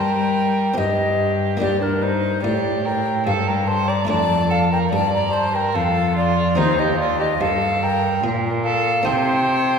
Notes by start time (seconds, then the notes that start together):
Already playing: G3 A#3 D4 G4 A#4 G5
0.74 C4 G4 D#5
0.78 G2 G4
1.57 G2 A#3 D4 G4 D5
1.61 G2 G4
1.82 D4 A#4
2.02 D#4 C5
2.43 A2 G4 D5
2.85 A#4 G5
3.26 G2 A4 F5
3.47 A#4 G5
3.67 C5 A5
3.88 D5 A#5
4.05 A3 D4 A4 D5
4.10 F2 A5
4.50 A4 F5
4.71 A#4 G5
4.92 G2 D5 A5
5.12 D5 A#5
5.33 C5 A5
5.53 A#4 G5
5.74 F2 A4 F5
6.16 F4 D5
6.55 D#2 C4 D#4 C5
6.79 G4 D#5
6.99 F4 D5
7.19 G4 D#5
7.40 G2 A4 F5
7.82 A#4 G5
8.24 A#2
8.64 A4 F5
9.03 C3 C4 D#4 C5 G5